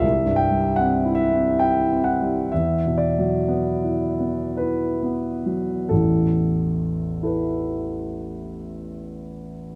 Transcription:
Already playing: E5
0.00 C2
0.25 G2
0.36 G5
0.51 G3
0.76 C4 F#5
1.05 E4
1.15 E5
1.32 C4
1.59 E4 G5
1.92 C4
2.04 F#5
2.21 G3
2.52 E2 E5
2.86 B2
2.98 D5
3.19 F#3
3.48 B3
3.84 E4
4.20 B3
4.57 E4 B4
5.03 B3
5.46 F#3
5.89 A1 E2 A4
7.23 E4 A4 B4

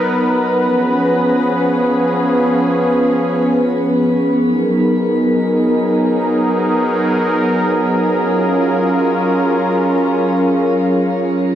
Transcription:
Already playing: F#3 B3 D#4 A#4 B4
0.64 F3 C#4 G#4
4.42 F#3 D#4 G#4 A#4
8.20 C#4 F4

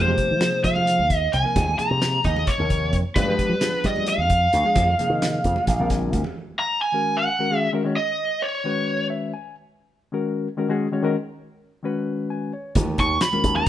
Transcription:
Already playing: F2 C5
0.06 C3 F3 A#3 D#4 G4
0.18 kick, closed hi-hat, low conga
0.31 F3
0.40 C3 F3 A#3 D#4 G#4, snare, closed hi-hat
0.64 F3 F5, kick, closed hi-hat
0.76 high conga, low conga
0.87 closed hi-hat, low conga
0.99 D#2
1.10 kick, closed hi-hat
1.17 D#5
1.33 C2 G#5, closed hi-hat
1.43 C3 F3 A#3 D#4 A#4
1.56 D#2, kick, closed hi-hat, high conga, low conga
1.78 C3 F3 A#3 D#4 G#4 A#5, muted slap bass stroke, closed hi-hat, low conga
1.91 C3
2.02 snare, closed hi-hat
2.24 D#2 D#5, kick, closed hi-hat
2.36 high conga, low conga
2.47 C#5, kick, closed hi-hat, low conga
2.58 D#2 C3 F3 A#3 D#4 A#4
2.70 kick, closed hi-hat
2.93 F2, kick, closed hi-hat
3.15 G2 F3 G#3 B3 D4 G4 B4, kick, closed hi-hat, high conga, low conga
3.27 F3 G#3 B3 D4 G4
3.39 muted slap bass stroke, kick, closed hi-hat, low conga
3.49 G3
3.61 F3 B3 D4 F4 G#4, snare, closed hi-hat
3.84 G3 D#5, kick, closed hi-hat
3.96 high conga, low conga
4.07 F5, closed hi-hat, low conga
4.18 F2
4.30 kick, closed hi-hat
4.53 D2, snare, closed hi-hat
4.64 F3 G#3 B3 D4 G#4
4.76 F2, kick, closed hi-hat, high conga, low conga
4.98 C3 F3 A#3 D#4 G#4, muted slap bass stroke, closed hi-hat, low conga
5.10 D#3
5.22 snare, closed hi-hat
5.33 low conga
5.44 F2, kick, closed hi-hat, low conga
5.56 high conga, low conga
5.67 A#1, kick, snare, closed hi-hat
5.79 A#1 D3 G3 C4 F4 A#4, low conga
5.90 G#5, kick, snare, closed hi-hat
6.02 high conga
6.13 D2 F5, kick, closed hi-hat, low conga
6.24 low conga
6.59 A#5
6.82 G#5
6.92 D#3 G#3 C#4 F#4 A#4
7.17 F#5
7.39 D#3 G#3 C#4 F#4 A#4
7.50 D#3 G#3 C#4 F#4 G#4
7.58 E5
7.73 D#3 G#3 C#4 F#4 A#4
7.84 D#3 G#3 C#4 F#4 C#5
7.97 D#5
8.42 C#5
8.64 D#3 G#3 C#4 F#4 B4
9.10 E5
9.34 G#5
10.12 D#3 G#3 C#4 F#4 A#4
10.57 D#3 G#3 C#4 F#4 A#4
10.69 D#3 G#3 C#4 F#4 G#4
10.92 D#3 G#3 C#4 F#4 C#5
11.03 D#3 G#3 C#4 F#4 A#4
11.83 D#3 G#3 C#4 F#4 B4
12.30 G#5
12.53 C#5
12.75 D#2, kick, closed hi-hat, high conga, low conga
12.98 D#2 C#6, kick, closed hi-hat
13.21 B5, snare, closed hi-hat
13.32 D#3 G#3 C#4 F#4 A#4, high conga
13.44 D#2, kick, closed hi-hat
13.56 A#5, low conga

